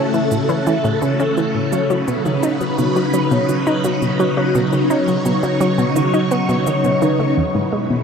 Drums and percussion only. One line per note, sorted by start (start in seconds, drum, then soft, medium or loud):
0.14 cabasa soft
0.14 low woodblock soft
0.31 cabasa medium
0.49 cabasa soft
0.67 cabasa medium
0.67 low woodblock soft
0.84 cabasa soft
1.02 cabasa medium
1.20 cabasa soft
1.20 low woodblock soft
1.37 cabasa soft
1.73 cabasa medium
1.73 low woodblock soft
1.90 cabasa soft
2.08 cabasa medium
2.25 cabasa soft
2.25 low woodblock soft
2.43 cabasa medium
2.61 cabasa soft
2.78 cabasa medium
2.78 low woodblock soft
2.96 cabasa soft
3.14 cabasa medium
3.31 cabasa soft
3.31 low woodblock soft
3.49 cabasa medium
3.67 cabasa soft
3.84 cabasa medium
3.84 low woodblock soft
4.02 cabasa soft
4.20 cabasa soft
4.37 low woodblock soft
4.55 cabasa medium
4.73 cabasa soft
4.90 cabasa medium
4.90 low woodblock soft
5.08 cabasa soft
5.25 cabasa medium
5.43 cabasa soft
5.43 low woodblock soft
5.61 cabasa medium
5.78 cabasa soft
5.96 cabasa medium
5.96 low woodblock soft
6.14 cabasa soft
6.31 cabasa medium
6.49 cabasa soft
6.49 low woodblock soft
6.67 cabasa medium
6.84 cabasa soft
7.02 cabasa soft
7.02 low woodblock soft